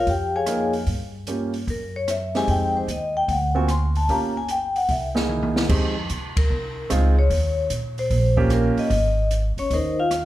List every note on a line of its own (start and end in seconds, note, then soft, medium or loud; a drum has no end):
0.07 0.83 F2 medium
0.07 0.34 G4 soft
0.07 0.34 G5 medium
0.07 kick soft
0.07 open hi-hat soft
0.36 0.72 G#4 medium
0.36 0.72 C#5 medium
0.36 0.73 F5 medium
0.36 0.72 G#5 medium
0.46 0.71 A#3 soft
0.46 0.71 D#4 soft
0.46 0.72 F4 soft
0.46 0.72 A#4 medium
0.46 cross-stick soft
0.46 closed hi-hat soft
0.73 open hi-hat soft
0.86 1.63 G2 medium
0.86 kick soft
0.86 open hi-hat soft
1.27 1.52 A#3 soft
1.27 1.52 C#4 soft
1.27 1.52 F4 soft
1.27 1.52 G4 soft
1.27 closed hi-hat soft
1.54 open hi-hat soft
1.67 2.44 F#2 medium
1.67 1.95 A#4 medium
1.67 kick soft
1.67 open hi-hat soft
1.96 2.08 C#5 medium
2.08 2.35 E5 medium
2.08 cross-stick medium
2.08 closed hi-hat soft
2.35 2.85 G#3 soft
2.35 2.86 C4 soft
2.35 2.86 D#4 soft
2.35 2.86 G4 medium
2.35 2.49 G#5 medium
2.35 snare soft
2.35 open hi-hat soft
2.48 2.85 F2 medium
2.48 2.75 G5 medium
2.48 kick soft
2.48 open hi-hat soft
2.77 2.89 C5 soft
2.88 3.25 D#2 medium
2.88 3.16 D#5 medium
2.88 closed hi-hat soft
3.17 3.29 G5 medium
3.28 4.05 D2 medium
3.28 3.56 F#5 medium
3.28 kick soft
3.28 open hi-hat soft
3.55 3.67 A#3 medium
3.55 3.67 C4 medium
3.55 3.67 F4 soft
3.55 3.67 F#4 medium
3.55 3.68 G#5 medium
3.68 3.96 C6 medium
3.68 cross-stick soft
3.68 closed hi-hat soft
3.95 4.09 A5 medium
3.95 open hi-hat soft
4.09 4.85 G1 medium
4.09 4.33 A#3 medium
4.09 4.33 C#4 soft
4.09 4.33 F4 soft
4.09 4.34 G4 medium
4.09 4.36 A#5 medium
4.09 kick soft
4.09 open hi-hat soft
4.37 4.49 G#5 medium
4.49 4.76 G5 medium
4.49 closed hi-hat soft
4.76 4.89 F#5 medium
4.76 open hi-hat soft
4.89 5.65 C2 medium
4.89 5.07 E5 medium
4.89 kick soft
4.89 open hi-hat soft
5.15 5.66 A#3 medium
5.15 5.66 D#4 soft
5.15 5.66 E4 soft
5.15 5.66 G#4 medium
5.15 snare soft
5.29 mid tom soft
5.43 mid tom soft
5.56 snare medium
5.69 6.07 F2 medium
5.69 5.93 G#3 soft
5.69 5.93 C4 soft
5.69 5.94 D#4 soft
5.69 5.94 G4 medium
5.69 kick medium
5.69 crash medium
6.10 6.47 C3 medium
6.10 closed hi-hat soft
6.37 6.87 A#4 medium
6.37 kick medium
6.37 ride medium
6.50 6.87 C2 medium
6.90 7.28 C#2 medium
6.90 7.14 G#3 medium
6.90 7.14 C4 medium
6.90 7.14 D#4 medium
6.90 7.14 F4 medium
6.90 7.17 G#4 medium
6.90 cross-stick medium
6.90 closed hi-hat soft
7.19 7.67 C#5 medium
7.30 7.67 D#2 medium
7.30 kick soft
7.30 open hi-hat soft
7.70 8.07 A#2 medium
7.70 closed hi-hat soft
7.98 8.48 C5 medium
7.98 open hi-hat soft
8.10 8.73 A#1 medium
8.10 kick soft
8.10 open hi-hat soft
8.37 8.88 A#3 medium
8.37 8.88 C#4 medium
8.37 8.88 F4 medium
8.37 8.88 G4 medium
8.37 kick soft
8.50 8.78 A#4 medium
8.50 cross-stick medium
8.50 closed hi-hat soft
8.77 9.28 D#5 medium
8.77 muted upright bass stroke soft
8.77 open hi-hat soft
8.90 9.53 G#1 medium
8.90 kick soft
8.90 open hi-hat soft
9.31 closed hi-hat soft
9.57 9.71 C#4 medium
9.57 9.71 C#5 medium
9.57 muted upright bass stroke soft
9.57 open hi-hat soft
9.71 10.25 D#2 medium
9.71 9.98 D#4 soft
9.71 9.98 A#4 soft
9.71 9.99 C5 medium
9.71 9.98 D#5 medium
9.71 kick soft
9.71 open hi-hat soft
9.99 10.25 F4 medium
9.99 10.25 F5 medium
10.11 cross-stick medium
10.11 closed hi-hat soft